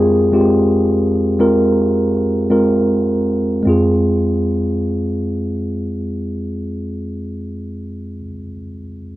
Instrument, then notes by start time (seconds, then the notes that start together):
tine electric piano
Already playing: F2 G#3 C4 F4 G4 G#4 A#4
0.32 G#3 C4 F4 G4
1.39 G#3 C4 F4 A#4
2.50 G#3 C4 F4 A#4
3.63 F2 G#3 C4
3.67 F4 G#4